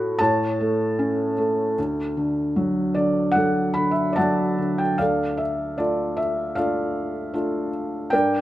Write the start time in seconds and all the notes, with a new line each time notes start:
Already playing: A2 F#4 A4 F#5 B5
0.19 A2 C#5 A5
0.60 A3
0.99 C#4
1.38 A3
1.78 D2
2.17 D3
2.56 F#3
2.94 D3 D5
3.32 A4 F#5
3.36 F#3
3.74 D3 B5
3.91 E5
4.13 D5 A5
4.17 F#3 F#5
4.58 D3
4.78 G5
4.98 D2 A4 D5 F5
5.37 E5
5.78 A3 D4 F4 D5
6.17 E5
6.55 A3 D4 F4 A4 D5 F5
7.34 A3 D4 F4
8.10 G2 A#4 D5 G5